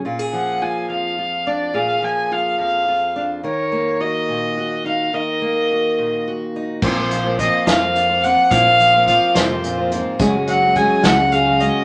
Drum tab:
CC |------|------|------|------|
HH |------|------|------|------|
SD |------|------|------|------|
BD |------|------|------|------|

CC |x-----|------|------|
HH |-xxxxx|xxxxxx|xxxxxx|
SD |---o--|---o--|---o--|
BD |o-o---|o-o---|o-o---|